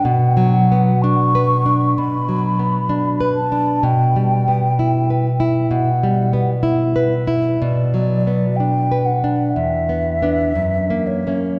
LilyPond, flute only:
\new Staff \with { instrumentName = "Flute" } { \time 4/4 \key b \minor \tempo 4 = 63 fis''4 cis'''4 b''4. a''8 | g''4. r8 fis''4 r4 | d''4 g''8 fis''8 e''4. cis''8 | }